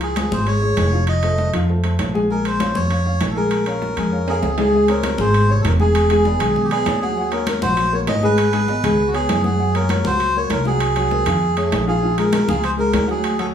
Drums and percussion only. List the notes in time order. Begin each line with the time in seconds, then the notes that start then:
0.01 high conga, high timbale
0.16 high conga, high timbale, low timbale
0.32 high conga
0.47 high conga, high timbale
0.63 high conga
0.77 high conga, high timbale, low timbale
1.07 high conga, high timbale
1.23 high conga, high timbale
1.38 high conga, low timbale
1.54 high timbale
1.69 high conga
1.84 high conga, high timbale
1.99 high conga, high timbale, low timbale
2.15 high conga
2.30 high conga
2.45 high conga, high timbale
2.60 high conga, high timbale, low timbale
2.75 high conga
2.91 high conga, high timbale
3.06 high conga
3.21 high conga, high timbale, low timbale
3.51 high conga, high timbale
3.66 high conga, high timbale
3.82 high conga, low timbale
3.97 high timbale
4.13 high conga
4.27 high conga, high timbale
4.42 high conga, high timbale
4.58 high conga, low timbale
4.73 high conga
4.88 high conga, high timbale
5.03 high conga, high timbale, low timbale
5.18 high conga
5.34 high conga, high timbale
5.49 high conga
5.65 high conga, high timbale, low timbale
5.80 high conga
5.95 high conga, high timbale
6.10 high conga, high timbale
6.25 high conga, low timbale
6.40 low conga, high timbale
6.56 high conga, low conga
6.71 high conga, high timbale
6.86 high conga, high timbale, low timbale
7.17 high conga
7.32 high conga, high timbale
7.47 high conga, high timbale, low timbale
7.62 high conga
7.77 high conga, high timbale
7.92 high conga
8.07 high conga, high timbale, low timbale
8.23 high conga
8.38 high conga, high timbale
8.53 high conga, high timbale
8.68 high conga, low timbale
8.84 low conga, high timbale
8.99 high conga
9.14 high conga, high timbale
9.29 high conga, high timbale, low timbale
9.44 high conga
9.60 high conga
9.75 high conga, high timbale
9.89 high conga, high timbale, low timbale
10.05 high conga
10.20 high conga, high timbale
10.35 high conga
10.50 high conga, high timbale, low timbale
10.65 high conga
10.80 high conga, high timbale
10.96 high conga, high timbale
11.11 high conga, low timbale
11.26 low conga, high timbale
11.42 high conga
11.57 high conga, high timbale
11.72 high conga, high timbale, low timbale
12.03 high conga
12.17 high conga, high timbale
12.33 high conga, high timbale, low timbale
12.49 high conga
12.63 high conga, high timbale
12.79 high conga
12.93 high conga, high timbale, low timbale
13.09 high conga
13.24 high conga, high timbale
13.39 high conga, high timbale